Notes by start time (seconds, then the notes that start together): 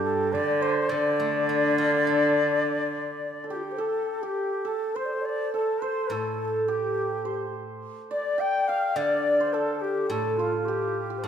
Already playing: G2 G3 G4 A4 D5 F5 G5
0.04 A4
0.33 D3 D5
0.62 C5
0.89 D3 D5
1.20 A3
1.49 D4
1.78 F4
2.07 A4
3.44 A4
3.49 G4
3.56 F4
3.63 G4
3.72 C5
3.78 A4
4.22 G4
4.65 A4
4.95 C5
5.05 D5
5.13 C5
5.21 D5
5.29 C5
5.53 A4
5.82 C5
6.10 A2 A4
6.68 G4
7.25 C5
8.11 D5
8.38 G5
8.68 F5
8.96 D3 D5 F5
9.02 D5
9.40 C5
9.53 A4
9.81 G4
10.10 A2 A4
10.37 F4
10.66 G4
11.10 G4
11.18 C5
11.24 A2 A4